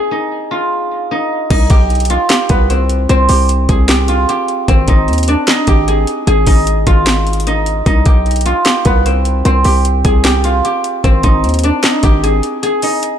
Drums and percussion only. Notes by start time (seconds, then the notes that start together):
1.50 kick, closed hi-hat, crash
1.70 kick, closed hi-hat
1.90 closed hi-hat
1.95 closed hi-hat
2.00 closed hi-hat
2.05 closed hi-hat
2.10 closed hi-hat
2.30 snare, clap, closed hi-hat
2.49 kick, closed hi-hat
2.70 closed hi-hat
2.90 closed hi-hat
3.09 closed hi-hat
3.29 open hi-hat
3.49 closed hi-hat
3.69 kick, closed hi-hat
3.89 snare, clap, closed hi-hat
4.08 closed hi-hat
4.29 closed hi-hat
4.48 closed hi-hat
4.68 kick, closed hi-hat
4.88 kick, closed hi-hat
5.08 closed hi-hat
5.13 closed hi-hat
5.18 closed hi-hat
5.23 closed hi-hat
5.28 closed hi-hat
5.48 snare, clap, closed hi-hat
5.67 kick, closed hi-hat
5.88 closed hi-hat
6.07 closed hi-hat
6.27 closed hi-hat
6.47 kick, open hi-hat
6.67 closed hi-hat
6.87 kick, closed hi-hat
7.07 snare, clap, closed hi-hat
7.27 closed hi-hat
7.33 closed hi-hat
7.40 closed hi-hat
7.47 closed hi-hat
7.66 closed hi-hat
7.86 kick, closed hi-hat
8.05 kick, closed hi-hat
8.26 closed hi-hat
8.31 closed hi-hat
8.36 closed hi-hat
8.41 closed hi-hat
8.46 closed hi-hat
8.66 snare, clap, closed hi-hat
8.85 kick, closed hi-hat
9.06 closed hi-hat
9.25 closed hi-hat
9.45 closed hi-hat
9.64 open hi-hat
9.85 closed hi-hat
10.05 kick, closed hi-hat
10.25 snare, clap, closed hi-hat
10.44 closed hi-hat
10.65 closed hi-hat
10.84 closed hi-hat
11.04 kick, closed hi-hat
11.23 kick, closed hi-hat
11.44 closed hi-hat
11.49 closed hi-hat
11.54 closed hi-hat
11.59 closed hi-hat
11.64 closed hi-hat
11.84 snare, clap, closed hi-hat
12.03 kick, closed hi-hat
12.24 closed hi-hat
12.43 closed hi-hat
12.63 closed hi-hat
12.82 open hi-hat
13.03 closed hi-hat